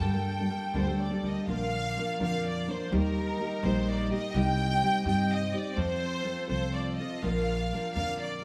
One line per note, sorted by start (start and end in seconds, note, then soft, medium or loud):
0.00 0.12 G2 medium
0.00 0.47 G2 medium
0.00 0.13 D3 medium
0.00 0.13 G3 medium
0.00 0.12 A#3 medium
0.00 0.12 D4 medium
0.00 1.43 A4 medium
0.00 0.12 A4 medium
0.00 1.43 A#4 medium
0.00 0.97 G5 medium
0.00 1.43 G5 medium
0.13 0.38 G3 soft
0.13 0.38 A#3 soft
0.13 0.38 D4 soft
0.13 0.37 A4 medium
0.39 0.48 G3 soft
0.39 0.49 A#3 soft
0.39 0.50 D4 soft
0.39 0.49 A4 soft
0.50 0.73 G3 medium
0.50 0.73 A#3 soft
0.50 0.73 D4 medium
0.50 0.73 A4 medium
0.73 1.05 D2 medium
0.73 0.86 G2 medium
0.73 0.85 D3 medium
0.73 0.86 G3 medium
0.73 0.86 A#3 medium
0.73 0.86 D4 medium
0.73 0.86 A4 medium
0.73 0.98 C5 medium
0.87 1.10 G3 soft
0.87 1.10 A#3 soft
0.87 1.09 D4 medium
0.87 1.09 A4 medium
1.02 1.24 D5 medium
1.10 1.22 G3 soft
1.10 1.22 A#3 soft
1.10 1.22 D4 soft
1.10 1.22 A4 soft
1.23 1.31 D2 medium
1.23 1.47 G3 medium
1.23 1.47 A#3 medium
1.23 1.48 D4 medium
1.23 1.48 A4 medium
1.23 1.49 D#5 medium
1.47 1.95 A#1 medium
1.47 1.97 A#2 medium
1.47 1.97 D3 medium
1.47 1.96 F3 medium
1.47 2.91 A#3 medium
1.47 1.97 A#3 medium
1.47 1.97 D4 medium
1.47 2.91 F4 medium
1.47 1.99 A#4 medium
1.47 2.92 D5 medium
1.47 2.18 F5 loud
1.97 2.20 F3 medium
1.97 2.19 A#3 medium
1.97 2.19 D4 medium
1.97 2.19 A#4 medium
2.20 2.67 F2 medium
2.20 2.69 A#2 medium
2.20 2.70 D3 medium
2.20 2.68 F3 medium
2.20 2.68 A#3 medium
2.20 2.67 D4 medium
2.20 2.67 A#4 medium
2.20 2.46 F5 loud
2.50 2.71 D5 medium
2.68 2.91 F3 soft
2.68 2.91 A#3 soft
2.68 2.92 D4 soft
2.68 2.92 A#4 medium
2.68 2.94 C5 medium
2.91 3.38 D#2 medium
2.91 3.66 D#3 medium
2.91 3.39 G3 medium
2.91 3.39 A#3 medium
2.91 3.40 D#4 medium
2.91 4.34 D#4 medium
2.91 3.40 G4 medium
2.91 5.76 G4 medium
2.91 4.34 A#4 medium
2.97 3.66 A#4 loud
3.39 3.63 G3 soft
3.39 3.63 A#3 medium
3.39 3.64 D#4 medium
3.39 3.64 G4 medium
3.63 4.09 A#1 medium
3.63 4.12 D#3 medium
3.63 4.12 G3 medium
3.63 4.12 A#3 medium
3.63 4.11 D#4 medium
3.63 4.10 G4 medium
3.63 3.89 C5 loud
3.89 4.12 D5 medium
4.11 4.35 A#3 soft
4.11 4.35 D#4 medium
4.11 4.34 G4 medium
4.11 4.34 D#5 medium
4.34 4.80 C2 medium
4.34 4.83 C3 medium
4.34 4.81 G3 medium
4.34 7.21 C4 medium
4.34 4.83 C4 medium
4.34 4.82 D#4 medium
4.34 4.83 G4 medium
4.34 5.77 D#5 medium
4.34 5.07 G5 loud
4.82 5.05 G3 medium
4.82 5.05 C4 soft
4.82 5.05 D#4 medium
4.82 5.05 G4 medium
5.05 5.52 G2 medium
5.05 5.54 C3 medium
5.05 5.54 G3 medium
5.05 5.54 C4 medium
5.05 5.53 D#4 medium
5.05 5.53 G4 medium
5.05 5.30 G5 loud
5.32 5.54 D#5 loud
5.54 5.75 C4 soft
5.54 5.77 D#4 soft
5.54 5.76 G4 medium
5.54 5.78 D5 medium
5.76 6.24 F2 medium
5.76 6.23 F3 medium
5.76 6.23 C4 medium
5.76 6.24 F4 medium
5.76 8.44 F4 medium
5.76 6.24 A4 medium
5.76 7.22 A4 medium
5.76 6.48 C5 loud
6.24 6.49 F3 soft
6.24 6.48 C4 medium
6.24 6.47 F4 soft
6.24 6.46 A4 medium
6.48 6.97 C2 medium
6.48 6.99 F3 medium
6.48 6.99 C4 medium
6.48 6.99 F4 medium
6.48 6.98 A4 medium
6.48 6.73 C5 loud
6.74 6.99 D5 medium
6.98 7.23 C4 soft
6.98 7.23 F4 soft
6.98 7.24 A4 soft
6.98 7.21 D#5 medium
7.22 7.70 A#1 medium
7.22 7.72 A#2 medium
7.22 7.73 D3 medium
7.22 7.72 F3 medium
7.22 7.74 A#3 medium
7.22 8.44 A#3 medium
7.22 7.73 D4 medium
7.22 7.74 A#4 medium
7.22 8.44 D5 medium
7.22 7.94 F5 medium
7.74 7.97 F3 soft
7.74 7.96 A#3 medium
7.74 7.96 D4 medium
7.74 7.96 A#4 medium
7.95 8.43 F2 medium
7.95 8.44 A#2 medium
7.95 8.44 D3 medium
7.95 8.43 F3 medium
7.95 8.43 A#3 medium
7.95 8.42 D4 medium
7.95 8.41 A#4 medium
7.95 8.19 F5 loud
8.22 8.43 D5 medium